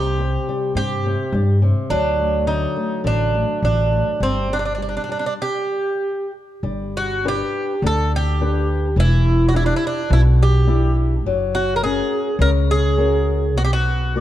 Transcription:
0.00 0.35 C2 medium
0.00 1.05 C3 medium
0.00 0.18 G3 soft
0.00 0.72 G4 medium
0.19 0.46 C4 soft
0.49 0.76 G3 soft
0.75 1.13 G2 medium
0.75 1.04 C4 soft
0.75 1.59 G4 medium
1.06 1.33 C3 soft
1.32 1.70 G2 medium
1.32 1.62 G3 soft
1.62 1.90 C3 soft
1.90 2.65 D2 medium
1.90 4.17 F#3 medium
1.90 2.44 D4 medium
2.20 2.47 A3 soft
2.47 2.75 D3 soft
2.47 3.01 D#4 medium
2.76 3.04 A3 soft
3.04 3.42 A1 medium
3.04 3.32 D3 medium
3.04 3.60 D4 medium
3.34 3.62 A3 medium
3.62 4.00 A1 medium
3.62 3.91 D3 soft
3.62 4.23 D4 medium
3.92 4.20 A3 soft
4.20 4.97 G1 medium
4.20 4.49 G3 medium
4.20 4.52 C4 medium
4.50 4.77 G3 soft
4.50 4.58 D4 medium
4.59 4.64 D4 medium
4.65 4.72 D4 medium
4.75 5.07 G3 soft
4.75 4.80 D4 soft
4.82 4.88 D4 medium
4.89 4.95 D4 soft
4.97 5.02 D4 soft
5.04 5.10 D4 soft
5.09 5.38 G3 soft
5.09 5.18 D4 medium
5.19 5.25 D4 soft
5.26 5.33 D4 medium
5.42 6.30 G4 medium
6.63 7.41 G1 medium
6.63 7.22 G3 medium
6.97 7.27 F#4 medium
7.25 7.72 D4 soft
7.25 7.72 G4 soft
7.25 7.81 G4 medium
7.25 7.72 B4 soft
7.82 8.98 D2 medium
7.82 8.38 D3 medium
7.87 8.11 A4 medium
8.16 8.95 G4 medium
8.41 8.86 D4 soft
8.41 8.86 G4 soft
8.41 8.86 B4 soft
8.96 9.71 E1 medium
8.96 9.53 E3 medium
8.96 9.48 E4 medium
9.48 9.56 F#4 medium
9.54 10.00 D4 soft
9.54 10.00 E4 soft
9.54 9.65 E4 medium
9.54 10.00 G4 medium
9.66 9.74 D4 medium
9.76 9.84 E4 medium
9.87 10.12 D4 medium
10.10 11.25 B1 loud
10.10 10.66 B2 medium
10.10 10.20 E4 medium
10.43 10.95 G4 medium
10.67 11.14 D4 soft
10.67 11.14 E4 soft
10.67 11.14 G4 medium
11.26 12.00 F#1 medium
11.26 11.81 F#3 medium
11.55 11.76 F#4 medium
11.76 11.83 A#4 medium
11.83 12.29 C#4 soft
11.83 12.29 F#4 soft
11.83 12.36 G#4 medium
11.83 12.29 A#4 medium
12.39 13.55 C#2 medium
12.39 12.96 C#3 medium
12.39 12.49 A#4 medium
12.71 13.57 G#4 medium
12.97 13.44 C#4 soft
12.97 13.44 F#4 soft
12.97 13.44 A#4 medium
13.55 14.20 B1 medium
13.55 14.13 B3 medium
13.55 13.63 F#4 medium
13.65 13.70 G4 medium
13.73 14.20 F#4 medium
14.16 14.20 F#4 soft
14.16 14.20 B4 soft
14.16 14.20 D5 soft

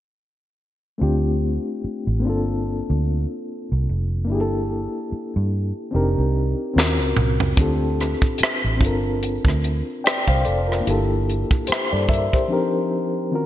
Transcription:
0.98 1.57 D2 medium
0.98 2.22 A3 medium
0.98 2.21 C4 medium
0.98 2.24 D4 medium
0.98 2.24 F4 medium
1.03 2.25 G4 medium
1.84 muted fingered electric bass stroke soft
2.07 2.25 A1 medium
2.20 4.23 A#3 medium
2.20 4.24 C4 medium
2.25 2.80 G1 medium
2.25 4.26 D4 medium
2.25 4.27 F4 medium
2.29 4.28 A4 medium
2.90 3.25 D2 medium
3.72 3.86 C2 medium
3.89 4.30 F1 medium
4.24 5.88 A#3 medium
4.24 5.89 D4 medium
4.30 4.86 G1 medium
4.30 5.90 E4 medium
4.30 5.91 G4 medium
4.35 4.39 G#4 medium
4.41 5.96 A4 medium
5.12 muted fingered electric bass stroke soft
5.36 5.71 G2 medium
5.91 6.14 F1 medium
5.91 6.72 C4 medium
5.91 6.75 D4 medium
5.91 6.76 D#4 medium
5.91 6.76 G4 medium
5.96 6.77 A#4 medium
6.18 6.53 C2 medium
6.74 7.00 D#2 medium
6.74 7.55 C4 medium
6.74 7.57 C#4 medium
6.74 7.58 F4 medium
6.78 7.59 F#4 medium
6.78 7.59 A#4 medium
6.78 snare soft
7.00 7.15 C#2 medium
7.16 7.53 C2 medium
7.16 mid tom medium
7.40 floor tom medium
7.56 8.14 D2 medium
7.56 8.76 C4 medium
7.56 8.78 D4 medium
7.56 8.80 F4 medium
7.56 8.82 G4 medium
7.56 kick loud
7.56 closed hi-hat medium
7.61 8.83 A4 medium
8.00 cross-stick soft
8.00 closed hi-hat soft
8.22 kick medium
8.38 muted fingered electric bass stroke soft
8.38 closed hi-hat medium
8.43 cross-stick medium
8.64 8.81 A1 medium
8.77 10.80 C4 medium
8.77 10.82 D4 medium
8.77 kick medium
8.81 9.37 G1 medium
8.81 9.62 F4 medium
8.81 9.63 A4 medium
8.81 closed hi-hat medium
8.86 9.64 A#4 medium
9.23 closed hi-hat medium
9.45 9.81 D2 medium
9.45 kick medium
9.45 cross-stick soft
9.64 closed hi-hat medium
10.04 10.27 D5 soft
10.04 10.27 G5 soft
10.04 cross-stick medium
10.04 closed hi-hat medium
10.28 10.43 C2 medium
10.28 10.45 C5 soft
10.28 10.44 F5 medium
10.28 kick medium
10.45 10.82 F1 medium
10.45 10.68 A4 soft
10.45 10.67 D5 medium
10.45 closed hi-hat soft
10.68 11.08 F4 soft
10.68 11.07 A#4 medium
10.72 cross-stick soft
10.80 12.44 A#3 medium
10.80 12.46 D4 medium
10.85 11.43 G1 medium
10.85 12.47 E4 medium
10.85 11.67 G4 medium
10.85 closed hi-hat medium
10.90 11.69 A4 medium
11.30 closed hi-hat medium
11.51 kick medium
11.67 11.91 G4 soft
11.67 11.91 C5 medium
11.67 muted fingered electric bass stroke soft
11.67 closed hi-hat medium
11.72 cross-stick medium
11.92 12.28 G2 medium
11.92 12.09 A4 soft
11.92 12.09 D5 medium
12.09 12.32 A#4 soft
12.09 12.32 E5 medium
12.09 kick medium
12.13 closed hi-hat medium
12.33 12.51 G4 soft
12.33 12.72 C5 soft
12.33 kick medium
12.48 13.32 F3 medium
12.48 13.31 C4 medium
12.48 13.32 D4 medium
12.48 13.33 D#4 medium
12.52 13.34 G4 medium
12.52 13.34 A#4 medium
13.31 13.46 D#3 medium
13.31 13.46 C4 medium
13.31 13.46 C#4 medium
13.31 13.46 F4 soft
13.35 13.46 F#4 medium
13.35 13.46 A#4 medium

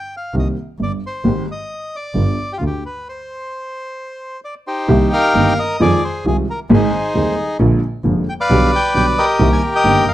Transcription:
0.00 0.16 G5 medium
0.17 0.35 F5 medium
0.34 0.53 C2 medium
0.34 0.53 C3 medium
0.34 0.53 D#3 soft
0.34 0.53 A#3 soft
0.34 0.53 C4 soft
0.34 0.53 G4 medium
0.39 0.48 D#5 medium
0.79 0.98 G1 soft
0.79 0.99 G1 soft
0.79 0.99 G2 soft
0.83 0.92 D5 medium
1.06 1.47 C5 medium
1.24 1.44 G#1 medium
1.24 1.44 G#2 medium
1.24 1.44 D#3 medium
1.24 1.44 G#3 medium
1.24 1.44 C4 medium
1.24 1.44 G4 medium
1.52 1.96 D#5 medium
1.96 2.53 D5 medium
2.14 2.34 G1 medium
2.14 2.34 G2 medium
2.14 2.34 D3 soft
2.14 2.34 G3 medium
2.14 2.34 B3 soft
2.14 2.34 F4 medium
2.53 2.58 G4 medium
2.58 2.79 D2 medium
2.58 2.80 D2 soft
2.58 2.80 D3 soft
2.58 2.64 F4 medium
2.67 2.84 G4 medium
2.86 3.08 B4 medium
3.09 4.40 C5 medium
4.44 4.54 D5 medium
4.67 5.54 D#4 medium
4.67 5.54 G4 medium
4.67 5.09 C5 medium
4.88 5.08 C2 medium
4.88 5.08 C3 medium
4.88 5.08 D#3 medium
4.88 5.08 A#3 medium
4.88 5.08 C4 medium
4.88 5.08 G4 medium
5.13 5.77 A#4 medium
5.13 5.59 F5 loud
5.34 5.53 G1 medium
5.34 5.54 G1 medium
5.34 5.54 G2 medium
5.34 5.54 D#3 medium
5.34 5.54 A#3 soft
5.34 5.54 C4 soft
5.34 5.54 G4 medium
5.59 5.82 D#5 loud
5.80 5.99 F2 medium
5.80 5.99 D#3 medium
5.80 5.99 F3 medium
5.80 5.99 G#3 medium
5.80 5.99 C4 medium
5.80 5.99 F4 medium
5.80 6.26 G#4 medium
5.80 6.04 D5 loud
6.05 6.25 C5 medium
6.25 6.44 C2 medium
6.25 6.44 C3 medium
6.25 6.44 D#3 soft
6.25 6.44 G#3 soft
6.25 6.44 C4 medium
6.25 6.44 F4 medium
6.25 6.37 G#4 medium
6.50 6.60 A#4 medium
6.70 6.89 G#1 loud
6.70 6.89 G#2 loud
6.70 6.89 D#3 medium
6.70 6.89 G#3 medium
6.70 6.89 C4 medium
6.70 7.57 D#4 medium
6.70 6.89 G#4 loud
6.70 7.57 G#4 medium
6.70 7.35 C5 medium
7.14 7.34 D#1 medium
7.14 7.33 D#2 medium
7.14 7.34 D#2 medium
7.14 7.33 D#3 medium
7.14 7.34 G#3 medium
7.14 7.34 C4 medium
7.14 7.34 G#4 medium
7.59 7.78 A#1 loud
7.59 7.79 A#1 medium
7.59 7.78 A#2 medium
7.59 7.78 D3 medium
7.59 7.78 G#3 medium
7.59 7.79 A#3 medium
7.59 7.79 F4 medium
8.04 8.23 F1 medium
8.04 8.23 F2 medium
8.04 8.23 D3 medium
8.04 8.23 G#3 soft
8.04 8.23 A#3 soft
8.04 8.23 F4 medium
8.29 8.34 G5 medium
8.40 9.26 B4 medium
8.40 9.25 D5 medium
8.40 8.71 F5 loud
8.50 8.68 B1 medium
8.50 8.69 B1 loud
8.50 8.69 B2 loud
8.50 8.68 D3 medium
8.50 8.69 G3 medium
8.50 8.69 B3 medium
8.50 8.69 G4 medium
8.76 8.94 G5 loud
8.94 9.14 B1 medium
8.94 9.14 B2 medium
8.94 9.13 D3 medium
8.94 9.13 G3 medium
8.94 9.14 B3 medium
8.94 9.14 G4 medium
8.94 9.06 G5 loud
9.18 10.04 G4 medium
9.18 9.74 A#4 medium
9.18 9.49 D#5 loud
9.39 9.58 C2 loud
9.39 9.58 C2 medium
9.39 9.58 C3 medium
9.39 9.58 D#3 medium
9.39 9.59 A#3 medium
9.39 9.59 C4 medium
9.39 9.59 G4 medium
9.53 9.62 G#5 loud
9.75 10.14 A#4 medium
9.75 10.14 D#5 medium
9.75 10.09 G5 loud
9.84 10.04 G1 medium
9.84 10.04 G2 medium
9.84 10.04 D#3 medium
9.84 10.04 A#3 medium
9.84 10.04 C4 soft
9.84 10.04 G4 medium
10.07 10.14 F1 medium
10.07 10.14 F5 loud

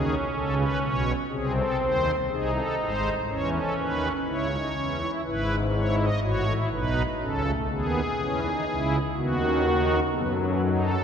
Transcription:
0.00 0.15 D#2 medium
0.00 0.15 D#3 medium
0.00 1.11 C#4 medium
0.00 0.15 G#4 medium
0.34 0.64 C#2 medium
0.34 0.64 C#3 medium
0.34 0.54 A4 medium
0.58 0.79 B4 medium
0.82 1.13 B1 medium
0.82 1.13 B2 medium
0.82 1.12 C#5 medium
1.31 1.62 C2 medium
1.31 1.62 C3 medium
1.31 2.16 C4 medium
1.31 1.52 G#4 medium
1.56 1.77 A4 medium
1.81 2.11 D#2 medium
1.81 2.11 D#3 medium
1.81 2.11 C5 medium
2.30 2.60 C2 medium
2.30 2.60 C3 medium
2.30 3.14 D#4 medium
2.30 2.51 G#4 medium
2.54 2.75 A4 medium
2.79 3.09 G#1 medium
2.79 3.09 G#2 medium
2.79 3.10 C5 medium
3.28 3.59 E2 medium
3.28 3.59 E3 medium
3.28 4.13 C#4 medium
3.28 3.50 C#5 medium
3.53 3.74 A4 medium
3.78 4.08 D#2 medium
3.78 4.08 D#3 medium
3.78 4.08 B4 medium
4.26 4.57 C#2 medium
4.26 4.57 C#3 medium
4.26 4.47 E4 medium
4.26 5.11 C#5 medium
4.51 4.72 D#4 medium
4.75 5.06 E2 medium
4.75 5.06 E3 medium
4.75 4.97 C#4 medium
5.00 5.21 E4 medium
5.25 6.09 G#1 medium
5.25 6.09 G#2 medium
5.25 5.55 E4 medium
5.25 5.56 B4 medium
5.75 6.05 E4 medium
5.75 5.95 C#5 medium
5.99 6.20 D#5 medium
6.23 6.53 A1 medium
6.23 6.53 A2 medium
6.23 6.44 F#4 loud
6.23 6.53 C#5 medium
6.48 6.69 E4 medium
6.72 7.02 B1 medium
6.72 7.02 B2 medium
6.72 7.02 D#4 medium
6.72 7.02 B4 medium
7.21 7.51 C#2 medium
7.21 7.51 C#3 medium
7.21 7.42 C#4 medium
7.21 7.51 A4 medium
7.45 7.66 A3 medium
7.70 8.00 D#2 medium
7.70 8.00 D#3 medium
7.70 8.00 B3 medium
7.70 8.96 G#4 medium
8.19 8.49 E2 medium
8.19 8.49 E3 medium
8.19 8.40 C#4 loud
8.44 8.65 D#4 medium
8.68 8.98 C#2 medium
8.68 8.98 C#3 medium
8.68 8.98 E4 medium
9.16 10.00 D#2 medium
9.16 10.00 D#3 medium
9.16 9.37 B3 medium
9.16 10.00 F#4 medium
9.41 9.62 C#4 medium
9.65 9.95 D#4 medium
10.14 10.96 F#2 medium
10.14 10.96 F#3 medium
10.14 10.34 B3 loud
10.14 10.21 A4 medium
10.22 10.30 B4 medium
10.30 10.37 A4 medium
10.38 10.58 C#4 loud
10.38 10.45 B4 medium
10.46 10.53 A4 medium
10.53 10.61 B4 medium
10.61 10.91 D#4 medium
10.61 10.69 A4 medium
10.69 10.77 B4 medium
10.76 11.04 A4 medium

